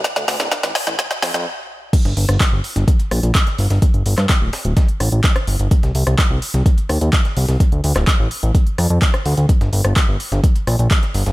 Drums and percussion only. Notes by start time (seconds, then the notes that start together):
0.04 kick, snare, closed hi-hat
0.16 snare, closed hi-hat
0.28 snare, closed hi-hat, open hi-hat
0.40 snare, closed hi-hat
0.51 kick, snare, closed hi-hat
0.63 snare, closed hi-hat
0.75 snare, open hi-hat
0.87 snare, closed hi-hat
0.99 kick, snare, closed hi-hat
1.11 snare, closed hi-hat
1.22 snare, closed hi-hat, open hi-hat
1.34 snare, closed hi-hat
1.93 kick, closed hi-hat, crash
2.05 snare, closed hi-hat
2.17 closed hi-hat, open hi-hat
2.29 cross-stick, closed hi-hat
2.40 kick, snare, clap, closed hi-hat
2.64 closed hi-hat, open hi-hat
2.76 snare, closed hi-hat
2.88 kick, closed hi-hat
3.00 closed hi-hat
3.11 cross-stick, closed hi-hat, open hi-hat
3.23 closed hi-hat
3.35 kick, snare, clap, closed hi-hat
3.47 snare, closed hi-hat
3.58 open hi-hat
3.70 snare, closed hi-hat
3.82 kick, closed hi-hat
3.94 closed hi-hat
4.06 closed hi-hat, open hi-hat
4.18 cross-stick, snare, clap, closed hi-hat
4.29 kick, snare, clap, closed hi-hat
4.53 snare, closed hi-hat, open hi-hat
4.65 closed hi-hat
4.77 kick, snare, closed hi-hat
4.88 closed hi-hat
5.00 cross-stick, closed hi-hat, open hi-hat
5.12 closed hi-hat
5.24 kick, snare, clap, closed hi-hat
5.36 cross-stick, snare, closed hi-hat
5.47 closed hi-hat, open hi-hat
5.59 closed hi-hat
5.71 kick, closed hi-hat
5.83 snare, closed hi-hat
5.95 closed hi-hat, open hi-hat
6.07 cross-stick, closed hi-hat
6.19 kick, snare, clap, closed hi-hat
6.42 closed hi-hat, open hi-hat
6.54 snare, closed hi-hat
6.66 kick, closed hi-hat
6.78 closed hi-hat
6.89 cross-stick, closed hi-hat, open hi-hat
7.01 closed hi-hat
7.13 kick, snare, clap, closed hi-hat
7.25 snare, closed hi-hat
7.37 open hi-hat
7.48 snare, closed hi-hat
7.60 kick, closed hi-hat
7.72 closed hi-hat
7.84 closed hi-hat, open hi-hat
7.96 cross-stick, snare, clap, closed hi-hat
8.07 kick, snare, clap, closed hi-hat
8.31 closed hi-hat, open hi-hat
8.43 closed hi-hat
8.55 kick, closed hi-hat
8.67 closed hi-hat
8.78 cross-stick, closed hi-hat, open hi-hat
8.90 closed hi-hat
9.02 kick, snare, clap, closed hi-hat
9.14 cross-stick, snare, closed hi-hat
9.26 closed hi-hat, open hi-hat
9.37 closed hi-hat
9.49 kick, closed hi-hat
9.61 snare, closed hi-hat
9.73 closed hi-hat, open hi-hat
9.85 cross-stick, closed hi-hat
9.96 kick, snare, clap, closed hi-hat
10.20 closed hi-hat, open hi-hat
10.32 snare, closed hi-hat
10.44 kick, closed hi-hat
10.56 closed hi-hat
10.67 cross-stick, closed hi-hat, open hi-hat
10.79 closed hi-hat
10.91 kick, snare, clap, closed hi-hat
11.03 snare, closed hi-hat
11.14 open hi-hat
11.26 snare, closed hi-hat